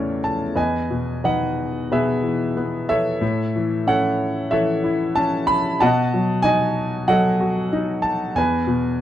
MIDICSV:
0, 0, Header, 1, 2, 480
1, 0, Start_track
1, 0, Key_signature, 4, "major"
1, 0, Tempo, 687285
1, 388, Time_signature, 4, 2, 24, 8
1, 864, Tempo, 660793
1, 2304, Tempo, 642398
1, 6631, End_track
2, 0, Start_track
2, 0, Title_t, "Grand piano"
2, 0, Program_c, 0, 0
2, 0, Control_c, 0, 64, 127
2, 0, Note_on_c, 0, 40, 52
2, 0, Note_on_c, 0, 45, 62
2, 0, Note_on_c, 0, 49, 46
2, 0, Note_on_c, 0, 52, 40
2, 0, Note_on_c, 0, 57, 36
2, 0, Note_on_c, 0, 61, 46
2, 0, Note_on_c, 0, 64, 42
2, 0, Note_on_c, 0, 69, 43
2, 0, Note_on_c, 0, 73, 61
2, 0, Note_on_c, 0, 74, 70
2, 0, Note_on_c, 0, 76, 69
2, 129, Note_off_c, 0, 73, 0
2, 167, Note_on_c, 0, 81, 64
2, 289, Note_off_c, 0, 52, 0
2, 292, Note_off_c, 0, 57, 0
2, 295, Note_off_c, 0, 61, 0
2, 354, Note_off_c, 0, 40, 0
2, 359, Note_off_c, 0, 45, 0
2, 369, Note_off_c, 0, 64, 0
2, 371, Note_off_c, 0, 69, 0
2, 388, Note_on_c, 0, 40, 50
2, 388, Note_on_c, 0, 71, 50
2, 394, Note_on_c, 0, 75, 50
2, 397, Control_c, 0, 64, 0
2, 398, Note_off_c, 0, 76, 0
2, 398, Note_on_c, 0, 80, 68
2, 402, Note_off_c, 0, 49, 0
2, 403, Note_off_c, 0, 74, 0
2, 405, Note_off_c, 0, 81, 0
2, 516, Control_c, 0, 64, 127
2, 632, Note_on_c, 0, 47, 43
2, 856, Note_off_c, 0, 71, 0
2, 858, Note_off_c, 0, 75, 0
2, 867, Note_on_c, 0, 71, 48
2, 869, Note_on_c, 0, 75, 50
2, 871, Note_on_c, 0, 51, 42
2, 873, Note_on_c, 0, 78, 69
2, 884, Note_off_c, 0, 80, 0
2, 1324, Note_off_c, 0, 78, 0
2, 1345, Note_off_c, 0, 47, 0
2, 1347, Note_off_c, 0, 71, 0
2, 1356, Note_on_c, 0, 47, 47
2, 1358, Note_on_c, 0, 71, 51
2, 1363, Note_on_c, 0, 68, 52
2, 1364, Note_on_c, 0, 76, 68
2, 1590, Note_on_c, 0, 52, 48
2, 1802, Note_off_c, 0, 75, 0
2, 1803, Note_off_c, 0, 51, 0
2, 1832, Note_on_c, 0, 59, 53
2, 2054, Note_off_c, 0, 76, 0
2, 2065, Note_on_c, 0, 76, 83
2, 2068, Note_on_c, 0, 69, 55
2, 2074, Note_on_c, 0, 73, 56
2, 2276, Note_off_c, 0, 40, 0
2, 2279, Note_off_c, 0, 47, 0
2, 2280, Note_off_c, 0, 71, 0
2, 2282, Note_off_c, 0, 68, 0
2, 2283, Note_off_c, 0, 52, 0
2, 2292, Note_off_c, 0, 59, 0
2, 2298, Note_on_c, 0, 45, 58
2, 2314, Control_c, 0, 64, 0
2, 2435, Control_c, 0, 64, 127
2, 2556, Note_on_c, 0, 52, 44
2, 2786, Note_off_c, 0, 73, 0
2, 2789, Note_on_c, 0, 61, 49
2, 2791, Note_off_c, 0, 69, 0
2, 2794, Note_on_c, 0, 78, 77
2, 2797, Note_on_c, 0, 73, 52
2, 2802, Note_on_c, 0, 69, 54
2, 2810, Note_off_c, 0, 76, 0
2, 3261, Note_off_c, 0, 52, 0
2, 3264, Note_off_c, 0, 73, 0
2, 3267, Note_on_c, 0, 76, 80
2, 3269, Note_off_c, 0, 69, 0
2, 3272, Note_on_c, 0, 52, 54
2, 3276, Note_on_c, 0, 73, 58
2, 3281, Note_on_c, 0, 69, 56
2, 3290, Note_off_c, 0, 78, 0
2, 3513, Note_on_c, 0, 64, 53
2, 3733, Note_off_c, 0, 61, 0
2, 3750, Note_on_c, 0, 81, 88
2, 3764, Note_on_c, 0, 61, 59
2, 3774, Note_off_c, 0, 76, 0
2, 3985, Note_on_c, 0, 83, 92
2, 4006, Note_off_c, 0, 81, 0
2, 4208, Note_off_c, 0, 45, 0
2, 4212, Note_off_c, 0, 52, 0
2, 4213, Note_off_c, 0, 73, 0
2, 4215, Note_off_c, 0, 69, 0
2, 4217, Note_off_c, 0, 64, 0
2, 4227, Note_off_c, 0, 61, 0
2, 4235, Note_on_c, 0, 81, 91
2, 4238, Note_off_c, 0, 83, 0
2, 4243, Note_on_c, 0, 47, 65
2, 4244, Note_on_c, 0, 78, 69
2, 4250, Note_on_c, 0, 75, 72
2, 4251, Control_c, 0, 64, 0
2, 4377, Control_c, 0, 64, 127
2, 4484, Note_on_c, 0, 54, 51
2, 4678, Note_off_c, 0, 81, 0
2, 4699, Note_on_c, 0, 80, 94
2, 4706, Note_off_c, 0, 75, 0
2, 4710, Note_on_c, 0, 63, 52
2, 4717, Note_on_c, 0, 75, 63
2, 5152, Note_off_c, 0, 80, 0
2, 5160, Note_off_c, 0, 78, 0
2, 5175, Note_off_c, 0, 54, 0
2, 5181, Note_off_c, 0, 75, 0
2, 5186, Note_on_c, 0, 54, 55
2, 5187, Note_on_c, 0, 78, 81
2, 5193, Note_on_c, 0, 75, 62
2, 5200, Note_on_c, 0, 69, 59
2, 5431, Note_on_c, 0, 66, 55
2, 5638, Note_off_c, 0, 63, 0
2, 5672, Note_on_c, 0, 63, 56
2, 5892, Note_on_c, 0, 81, 79
2, 5927, Note_off_c, 0, 78, 0
2, 6116, Note_off_c, 0, 54, 0
2, 6117, Note_off_c, 0, 47, 0
2, 6118, Note_off_c, 0, 75, 0
2, 6122, Note_off_c, 0, 69, 0
2, 6126, Note_off_c, 0, 66, 0
2, 6134, Note_off_c, 0, 63, 0
2, 6140, Note_on_c, 0, 40, 60
2, 6144, Note_on_c, 0, 80, 79
2, 6146, Note_off_c, 0, 81, 0
2, 6155, Control_c, 0, 64, 0
2, 6161, Note_on_c, 0, 71, 55
2, 6294, Control_c, 0, 64, 127
2, 6377, Note_on_c, 0, 47, 51
2, 6631, Note_off_c, 0, 40, 0
2, 6631, Note_off_c, 0, 47, 0
2, 6631, Note_off_c, 0, 71, 0
2, 6631, Note_off_c, 0, 80, 0
2, 6631, End_track
0, 0, End_of_file